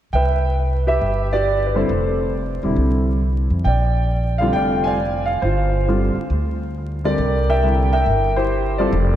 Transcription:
0.13 C2 B4 E5 G5
0.87 G4 B4 E5
1.01 G1
1.33 G4 B4 D5
1.66 B4
1.74 D3 G3 C4 E4 A4 C5
1.89 F1
2.63 E1 D3 G3 C4 E4
2.76 C2
3.50 F2
3.64 A#1 D5 G5
4.38 D3 G3 C4 F4 F5
4.53 F1 D5 G5
4.75 G5
4.84 D5 F5 G#5
5.26 F5
5.42 G1 F4 C5
5.88 D3 G3 C4 F4
6.16 muted upright bass stroke
6.30 D2
7.04 D3 G3 C4 G4 A#4 D5
7.18 C2
7.50 A#4 E5 G5
7.62 D3 G3 C4 E4
7.93 A#4 E5 G5
8.06 G1
8.36 E4 G4 C5
8.78 G3 C4 F4 G4 A4 D5
8.92 F1

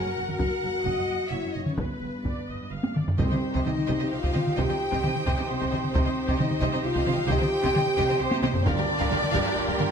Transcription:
Already playing: F#4 A#4 F#5
0.06 F#2
0.17 F#1 F#2
0.29 F#2, taiko mid
0.37 F#1 F#2 F#4 F#5, taiko
0.62 F#1 F#2
0.73 F#2
0.83 F#1 F#2 D#5, taiko
0.97 F#2
1.08 F#1 F#2
1.20 F#2
1.28 F#1 F#2 E4 C#5 E5
1.44 F#2
1.52 F#1 F#2 D#4 D#5
1.65 F#2 C#4 C#5, taiko mid
1.74 G1 B3 B4, taiko
1.78 G2
2.02 G1 G2
2.13 G2
2.24 G1 G2 D5, taiko
2.37 G2
2.48 G1 G2 D#5
2.60 G2
2.71 G1 G2 F5
2.83 G2, taiko high
2.95 G1 G2 D5, taiko mid
3.08 G2, taiko low
3.18 C2 C3 C4 D#4 G4 C5 D#5 G5, taiko
3.30 C3 G4 C5 D#5, taiko mid
3.53 C3 G4 C5 D#5, taiko
3.62 D#4 G4 C5 D#5
3.66 C2 C3 D#5, taiko mid
3.78 taiko mid
3.87 C2 C3 G4 C5 D#5, taiko
3.99 C3 G4 C5 D#5
4.07 G4 F5
4.11 C2 C3 F4 C5 F5
4.22 C3 G4 C5 D#5, taiko
4.33 C2 C3 G4 C5 D#5, taiko mid
4.47 taiko mid
4.54 C2 G4 C5 D#5 G5
4.58 C3 G4 G5, taiko
4.68 C3 G4 C5 D#5, taiko mid
4.91 C3 G4 C5 D#5, taiko
5.02 C2 C3 G4 C5 D#5, taiko mid
5.16 taiko mid
5.26 C2 C3 G4 C5 D#5, taiko
5.37 C3 G4 C5 D#5
5.46 C2 C4 G4 C5
5.50 C3
5.59 C3 G4 C5 D#5, taiko
5.71 C2 C3 G4 C5 D#5, taiko mid
5.84 taiko mid
5.93 C2 C3 C4 G4 C5 D#5, taiko
6.05 C3 G4 C5 D#5, taiko mid
6.27 C3 G4 C5 D#5, taiko
6.36 C2 C3 D#4 G4 C5 D#5, taiko mid
6.51 taiko mid
6.60 C2 C3 G4 C5 D#5, taiko
6.71 C3 G4 C5 D#5
6.82 C2 C3 F4 G4 F5
6.87 C5
6.93 C3 G4 C5, taiko
6.98 D#5
7.05 C2 C3 G4 C5, taiko mid
7.12 D#5
7.18 taiko mid
7.26 C2 C3 G4 C5 G5, taiko
7.31 G4 D#5
7.38 C3 G4 C5, taiko mid
7.43 D#5
7.62 C3 G4 C5 D#5, taiko
7.73 C2 C3 G4 C5, taiko mid
7.77 D#5
7.87 taiko mid
7.96 C2 C3 G4 C5 D#5, taiko
8.08 C3 G4 C5 D#5
8.19 C2 C3 C4 G4 C5
8.30 C3 G4 C5 D#5, taiko high
8.42 C2 C3 C4 G4 C5 D#5, taiko high
8.55 taiko low
8.63 G1 G2 D4 F4 G4 A#4 D5 F5 G5, taiko
8.77 G2 G4 A#4 F5, taiko mid
8.98 G2 G4 A#4 F5, taiko
9.11 G1 G2 G4 A#4 F5, taiko mid
9.24 taiko mid
9.32 G1 G2 G4 A#4 F5, taiko
9.44 G2 G4 A#4 F5
9.56 G1 G2 G4 D5
9.66 G2 G4 A#4 F5, taiko
9.79 G1 G2 G4 A#4 F5, taiko mid

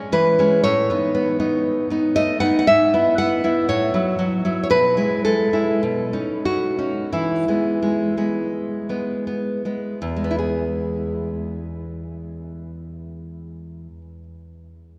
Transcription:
Already playing: G#3 C#4
0.12 E3 B4
0.39 G#3 C#4
0.64 A2 C#5
0.90 B3 D#4
1.15 B3
1.40 B3 D#4
1.90 B3 D#4
2.16 A3 D#5
2.40 B3 D#4 F#5
2.59 F#5
2.67 G#2 E5
2.94 B3 E4
3.18 B3 F#5
3.44 B3 E4
3.69 A2 C#5
3.94 F#3 E4
4.19 F#3
4.45 F#3 E4
4.63 C#5
4.70 B2 B4
4.97 G#3 E4
5.25 G#3 A4
5.53 G#3 E4
5.83 B2
6.13 C#4 D#4
6.45 C#4 F#4
6.79 C#4 D#4
7.13 E3 E4
7.48 G#3 B3
7.83 G#3
8.17 G#3 B3
8.89 G#3 B3
9.27 B3
9.65 G#3 B3
10.02 E2
10.16 G#3
10.24 B3
10.31 E4
10.39 G#4

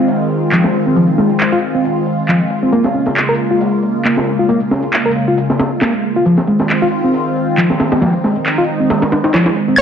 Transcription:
Already playing: D#3 G#3 C4 F4
0.08 open hi-hat
0.30 closed hi-hat
0.52 F3, clap, closed hi-hat
0.64 snare
0.74 closed hi-hat
0.87 C4
0.96 F3, closed hi-hat
1.18 G#3, snare, closed hi-hat
1.30 closed hi-hat
1.40 clap, closed hi-hat
1.52 F4
1.62 closed hi-hat
1.75 C4
1.84 open hi-hat
2.06 closed hi-hat
2.28 F3, clap, closed hi-hat
2.50 closed hi-hat
2.63 C4, closed hi-hat
2.72 C#3 A#3, closed hi-hat
2.84 snare
2.94 C#4, closed hi-hat
3.06 snare
3.16 clap, closed hi-hat
3.29 A#4
3.38 closed hi-hat
3.51 F4
3.61 open hi-hat
3.83 closed hi-hat
4.05 A#3, clap, closed hi-hat
4.17 snare
4.27 closed hi-hat
4.39 F4
4.49 A#3, closed hi-hat
4.71 C#4, snare, closed hi-hat
4.83 closed hi-hat
4.93 clap, closed hi-hat
5.06 A#4
5.16 closed hi-hat
5.28 F4
5.38 closed hi-hat
5.50 snare
5.59 snare, closed hi-hat
5.82 A#3, snare, clap, closed hi-hat
6.04 closed hi-hat
6.16 F4, closed hi-hat
6.25 D#3 F3 G#3 C4 F4, closed hi-hat
6.38 snare
6.47 G#3, closed hi-hat
6.60 snare
6.69 clap, closed hi-hat
6.82 F4
6.92 closed hi-hat
7.04 C4
7.14 open hi-hat
7.36 closed hi-hat
7.58 F3, clap, closed hi-hat
7.70 snare
7.80 snare, closed hi-hat
7.92 C4, snare, closed hi-hat
8.02 F3 D#4, snare, closed hi-hat
8.24 G#3, snare, closed hi-hat
8.36 closed hi-hat
8.46 clap, closed hi-hat
8.58 F4
8.68 closed hi-hat
8.80 C4
8.90 snare, closed hi-hat
9.02 snare, closed hi-hat
9.12 snare, closed hi-hat
9.24 snare, closed hi-hat
9.34 F3, snare, clap, closed hi-hat
9.46 snare, closed hi-hat
9.56 closed hi-hat
9.68 C4, closed hi-hat
9.78 C#3 A#3 F4 C#5, closed hi-hat

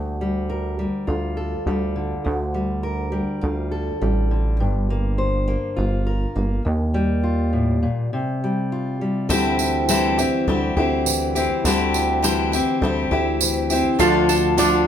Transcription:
Already playing: D2 G3
0.21 G3
0.49 A#4
0.79 G3
1.07 D2 F4
1.37 A4
1.66 D2 G3
1.96 D3
2.24 D2
2.54 G3
2.83 A#4
3.12 G3
3.41 D2 F4
3.71 A4
4.01 A1 G3
4.31 D3
4.60 G1 G2
4.90 A#3
5.18 C5
5.48 A#3
5.76 G1 F4
6.07 A#4
6.36 G1 A#3
6.65 D#2
6.94 G3
7.23 F4
7.53 A2
7.83 A#2
8.13 C3
8.44 G3
8.72 F4
9.01 G3
9.29 D2 D3 E3 G3 C4 E4 G4, tambourine
9.59 E4, tambourine
9.89 D3 E3 G3 C4 E4 G4, tambourine
10.18 C4 E4 G4, tambourine
10.47 D2 G3 C4 E4 G4
10.77 D2 C4 E4 G4
11.06 E3, tambourine
11.35 C4 E4 G4, tambourine
11.64 D2 D3 G3 C4 E4 G4, tambourine
11.94 E4, tambourine
12.22 D3 E3 G3 C4 E4 G4, tambourine
12.52 C4 E4 G4, tambourine
12.82 D2 G3 C4 E4 G4
13.11 D2 C4 E4 G4
13.41 E3, tambourine
13.70 C4 E4 G4, tambourine
13.99 D2 D3 F3 A3 D4 F4 A4 D5 F5, tambourine
14.29 A3 D4 F4 D5 A5, tambourine
14.57 D3 F3 A3 D4 F4 A4 D5 D6, tambourine

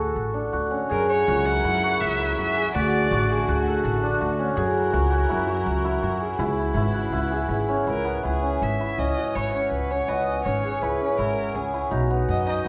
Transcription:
Already playing: C#4 E4 F#4 A4
0.16 A1
0.34 D4
0.53 D2 F#4
0.71 C#4
0.89 F#2 F#3 E4 G#4 A#4
1.09 C#5
1.28 C#2 F#4
1.46 F#4 F#5
1.64 F#2 E4
1.83 F#4
2.01 C#2 E5
2.20 E4
2.38 F#2 F#4 E5
2.57 G#4
2.74 D2 D3 A3 F#4 D5
3.11 A1 F#4
3.31 G#4
3.48 D2 F#4
3.67 A4
3.84 A1
4.03 D4
4.21 D2 F#4
4.39 C#4
4.56 F#2 F#3 E4 F#4 G#4 A#4
4.92 C#2 F#4
5.10 F#4
5.29 F#2 E4
5.47 F#4
5.66 C#2
5.84 E4
6.01 F#2 F#4
6.20 G#4
6.39 C#2 C#3 B3 E4
6.74 G#1 E4
6.94 F#4
7.12 C#2 E4
7.31 G#4
7.49 G#1
7.69 C#4
7.87 C#2 E4 A#4
8.05 B3
8.23 C#2 E4 G#4
8.42 C#4
8.62 G#1 E5
8.80 E4
8.98 C#2 C#4 D#5
9.17 F#4
9.35 G#1 E4 C#5
9.53 C#4 C#5
9.71 C#2 B4
9.91 C#4 C#5
10.08 C#2 B3 D#5
10.45 G#1 C#4 C#5
10.64 G#4
10.82 C#2 E4 B4
11.01 C#4
11.18 G#1 E4 A#4
11.55 C#2 C#4 G#4
11.73 E4
11.91 B1 D#4 F#4
12.10 B3
12.28 F#2 D#5
12.47 D#4 D#5

